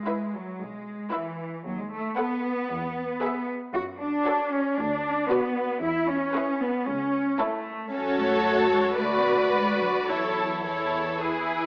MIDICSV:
0, 0, Header, 1, 6, 480
1, 0, Start_track
1, 0, Key_signature, 3, "major"
1, 0, Tempo, 523560
1, 1513, Time_signature, 4, 2, 24, 8
1, 6778, Tempo, 534283
1, 8698, Tempo, 551978
1, 10550, End_track
2, 0, Start_track
2, 0, Title_t, "Violin section"
2, 0, Program_c, 0, 48
2, 63, Note_on_c, 0, 76, 35
2, 424, Note_off_c, 0, 76, 0
2, 1035, Note_on_c, 0, 76, 45
2, 1392, Note_off_c, 0, 76, 0
2, 1988, Note_on_c, 0, 78, 45
2, 2350, Note_off_c, 0, 78, 0
2, 2955, Note_on_c, 0, 76, 51
2, 3308, Note_off_c, 0, 76, 0
2, 3903, Note_on_c, 0, 73, 52
2, 4258, Note_off_c, 0, 73, 0
2, 4860, Note_on_c, 0, 74, 54
2, 5214, Note_off_c, 0, 74, 0
2, 5812, Note_on_c, 0, 71, 49
2, 6174, Note_off_c, 0, 71, 0
2, 6780, Note_on_c, 0, 73, 51
2, 7137, Note_off_c, 0, 73, 0
2, 7265, Note_on_c, 0, 73, 48
2, 8182, Note_off_c, 0, 73, 0
2, 8220, Note_on_c, 0, 74, 43
2, 9163, Note_off_c, 0, 74, 0
2, 9182, Note_on_c, 0, 73, 36
2, 9659, Note_off_c, 0, 73, 0
2, 9669, Note_on_c, 0, 73, 34
2, 10138, Note_off_c, 0, 73, 0
2, 10144, Note_on_c, 0, 71, 31
2, 10550, Note_off_c, 0, 71, 0
2, 10550, End_track
3, 0, Start_track
3, 0, Title_t, "Violin section"
3, 0, Program_c, 1, 48
3, 64, Note_on_c, 1, 71, 41
3, 425, Note_off_c, 1, 71, 0
3, 1031, Note_on_c, 1, 71, 40
3, 1390, Note_off_c, 1, 71, 0
3, 1997, Note_on_c, 1, 71, 44
3, 2354, Note_off_c, 1, 71, 0
3, 2956, Note_on_c, 1, 71, 47
3, 3308, Note_off_c, 1, 71, 0
3, 3909, Note_on_c, 1, 69, 50
3, 4261, Note_off_c, 1, 69, 0
3, 4855, Note_on_c, 1, 71, 49
3, 5211, Note_off_c, 1, 71, 0
3, 5821, Note_on_c, 1, 68, 48
3, 6179, Note_off_c, 1, 68, 0
3, 6770, Note_on_c, 1, 69, 50
3, 7132, Note_off_c, 1, 69, 0
3, 7264, Note_on_c, 1, 69, 52
3, 8181, Note_off_c, 1, 69, 0
3, 8215, Note_on_c, 1, 71, 43
3, 9179, Note_off_c, 1, 71, 0
3, 9183, Note_on_c, 1, 69, 37
3, 9657, Note_off_c, 1, 69, 0
3, 9671, Note_on_c, 1, 69, 36
3, 10139, Note_off_c, 1, 69, 0
3, 10147, Note_on_c, 1, 68, 35
3, 10550, Note_off_c, 1, 68, 0
3, 10550, End_track
4, 0, Start_track
4, 0, Title_t, "Viola section"
4, 0, Program_c, 2, 48
4, 56, Note_on_c, 2, 64, 40
4, 420, Note_off_c, 2, 64, 0
4, 1024, Note_on_c, 2, 64, 48
4, 1387, Note_off_c, 2, 64, 0
4, 1992, Note_on_c, 2, 69, 47
4, 2352, Note_off_c, 2, 69, 0
4, 2950, Note_on_c, 2, 68, 51
4, 3305, Note_off_c, 2, 68, 0
4, 3900, Note_on_c, 2, 66, 48
4, 4256, Note_off_c, 2, 66, 0
4, 4856, Note_on_c, 2, 66, 60
4, 5212, Note_off_c, 2, 66, 0
4, 5820, Note_on_c, 2, 64, 50
4, 6179, Note_off_c, 2, 64, 0
4, 6782, Note_on_c, 2, 64, 55
4, 7138, Note_off_c, 2, 64, 0
4, 7267, Note_on_c, 2, 66, 49
4, 8183, Note_off_c, 2, 66, 0
4, 8219, Note_on_c, 2, 66, 49
4, 9162, Note_off_c, 2, 66, 0
4, 9183, Note_on_c, 2, 64, 38
4, 9660, Note_off_c, 2, 64, 0
4, 9671, Note_on_c, 2, 64, 36
4, 10137, Note_off_c, 2, 64, 0
4, 10147, Note_on_c, 2, 64, 34
4, 10550, Note_off_c, 2, 64, 0
4, 10550, End_track
5, 0, Start_track
5, 0, Title_t, "Cello section"
5, 0, Program_c, 3, 48
5, 0, Note_on_c, 3, 56, 51
5, 292, Note_off_c, 3, 56, 0
5, 305, Note_on_c, 3, 54, 52
5, 541, Note_on_c, 3, 56, 53
5, 548, Note_off_c, 3, 54, 0
5, 1029, Note_off_c, 3, 56, 0
5, 1029, Note_on_c, 3, 52, 54
5, 1502, Note_off_c, 3, 52, 0
5, 1505, Note_on_c, 3, 54, 58
5, 1626, Note_off_c, 3, 54, 0
5, 1637, Note_on_c, 3, 56, 52
5, 1747, Note_on_c, 3, 57, 61
5, 1754, Note_off_c, 3, 56, 0
5, 1985, Note_off_c, 3, 57, 0
5, 1995, Note_on_c, 3, 59, 67
5, 3167, Note_off_c, 3, 59, 0
5, 3428, Note_on_c, 3, 66, 70
5, 3501, Note_off_c, 3, 66, 0
5, 3666, Note_on_c, 3, 62, 68
5, 4132, Note_off_c, 3, 62, 0
5, 4143, Note_on_c, 3, 61, 60
5, 4381, Note_off_c, 3, 61, 0
5, 4381, Note_on_c, 3, 62, 66
5, 4854, Note_on_c, 3, 59, 70
5, 4858, Note_off_c, 3, 62, 0
5, 5333, Note_off_c, 3, 59, 0
5, 5335, Note_on_c, 3, 64, 71
5, 5571, Note_off_c, 3, 64, 0
5, 5578, Note_on_c, 3, 61, 69
5, 6057, Note_on_c, 3, 59, 63
5, 6061, Note_off_c, 3, 61, 0
5, 6291, Note_on_c, 3, 61, 66
5, 6299, Note_off_c, 3, 59, 0
5, 6772, Note_on_c, 3, 57, 63
5, 6776, Note_off_c, 3, 61, 0
5, 7256, Note_off_c, 3, 57, 0
5, 7256, Note_on_c, 3, 61, 64
5, 7494, Note_off_c, 3, 61, 0
5, 7497, Note_on_c, 3, 57, 63
5, 7975, Note_off_c, 3, 57, 0
5, 7976, Note_on_c, 3, 56, 58
5, 8210, Note_off_c, 3, 56, 0
5, 8214, Note_on_c, 3, 57, 59
5, 8376, Note_off_c, 3, 57, 0
5, 8382, Note_on_c, 3, 59, 49
5, 8541, Note_off_c, 3, 59, 0
5, 8541, Note_on_c, 3, 57, 53
5, 8697, Note_on_c, 3, 56, 55
5, 8702, Note_off_c, 3, 57, 0
5, 8929, Note_on_c, 3, 54, 42
5, 8932, Note_off_c, 3, 56, 0
5, 8999, Note_off_c, 3, 54, 0
5, 9172, Note_on_c, 3, 54, 49
5, 9651, Note_off_c, 3, 54, 0
5, 9663, Note_on_c, 3, 52, 40
5, 10550, Note_off_c, 3, 52, 0
5, 10550, End_track
6, 0, Start_track
6, 0, Title_t, "Double bass section"
6, 0, Program_c, 4, 48
6, 549, Note_on_c, 4, 35, 53
6, 931, Note_off_c, 4, 35, 0
6, 1513, Note_on_c, 4, 39, 54
6, 1891, Note_off_c, 4, 39, 0
6, 2473, Note_on_c, 4, 40, 61
6, 2850, Note_off_c, 4, 40, 0
6, 3422, Note_on_c, 4, 42, 68
6, 3799, Note_off_c, 4, 42, 0
6, 4376, Note_on_c, 4, 38, 67
6, 4755, Note_off_c, 4, 38, 0
6, 5335, Note_on_c, 4, 40, 63
6, 5716, Note_off_c, 4, 40, 0
6, 6300, Note_on_c, 4, 37, 64
6, 6679, Note_off_c, 4, 37, 0
6, 7267, Note_on_c, 4, 42, 50
6, 8183, Note_off_c, 4, 42, 0
6, 8218, Note_on_c, 4, 38, 45
6, 9162, Note_off_c, 4, 38, 0
6, 9188, Note_on_c, 4, 40, 42
6, 10550, Note_off_c, 4, 40, 0
6, 10550, End_track
0, 0, End_of_file